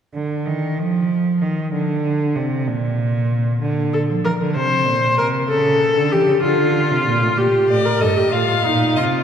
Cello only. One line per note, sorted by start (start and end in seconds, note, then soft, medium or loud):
0.14 0.47 D3 medium
0.46 0.79 D#3 medium
0.78 1.43 F3 medium
1.41 1.72 D#3 medium
1.72 2.38 D3 medium
2.36 2.69 C3 medium
2.67 3.61 A#2 medium
3.62 4.08 D3 medium
4.09 4.15 F3 medium
4.25 4.31 E3 medium
4.40 4.57 D3 medium
4.56 4.89 C3 medium
4.87 5.20 A#2 medium
5.19 5.49 C3 medium
5.49 5.95 C#3 medium
5.97 6.14 D3 medium
6.12 6.27 E3 medium
6.27 6.34 C#3 medium
6.43 6.92 D3 medium
6.91 7.06 C3 medium
7.06 7.24 A#2 medium
7.22 7.36 A2 medium
7.37 7.45 A#2 medium
7.69 8.00 A2 medium
8.00 8.08 G2 medium
8.32 8.64 A2 medium
8.65 8.98 A#2 medium
8.96 9.23 C3 medium